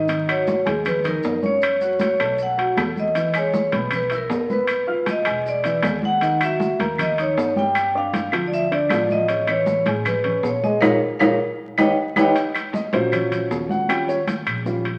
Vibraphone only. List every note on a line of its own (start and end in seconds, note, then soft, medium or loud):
0.00 0.31 D#5 medium
0.30 0.65 C#5 medium
0.87 0.95 B4 medium
1.07 1.41 A#4 medium
1.46 2.03 C#5 medium
2.04 2.38 C#5 medium
2.43 2.76 F#5 loud
2.99 3.37 D#5 loud
3.38 3.72 C#5 medium
3.95 4.03 B4 medium
4.16 4.50 A#4 medium
4.53 5.05 B4 medium
5.11 5.45 D#5 medium
5.49 5.83 D5 loud
6.05 6.40 F#5 loud
6.43 6.78 E5 medium
7.01 7.20 D#5 loud
7.21 7.59 C#5 medium
7.59 7.97 G5 loud
7.98 8.32 F5 medium
8.47 8.52 D5 medium
8.54 8.73 E5 loud
8.73 9.12 D5 loud
9.12 9.50 D#5 loud
9.49 9.84 C#5 loud
10.07 10.46 B4 medium
10.46 10.63 C#5 medium
10.64 10.81 D#5 medium
10.81 10.94 A#4 loud
10.81 10.94 C#5 loud
10.81 10.94 F5 loud
11.19 11.32 A#4 loud
11.19 11.33 C#5 loud
11.19 11.32 F5 loud
11.78 11.90 C#5 medium
11.78 11.90 D#5 medium
11.78 11.90 G5 loud
12.17 12.30 C#5 loud
12.17 12.29 D#5 medium
12.17 12.29 G5 loud